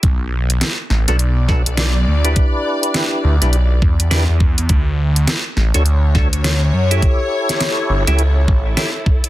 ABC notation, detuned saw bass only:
X:1
M:4/4
L:1/16
Q:"Swing 16ths" 1/4=103
K:Bm
V:1 name="Detuned saw bass" clef=bass
B,,,4 z2 A,,, B,,,4 B,,,3 D,,2 | z6 D,, B,,,3 E,,2 E,, E,,2 E,, | D,,4 z2 A,,, D,,4 D,,3 F,,2 | z6 G,,, C,,3 A,,,2 z4 |]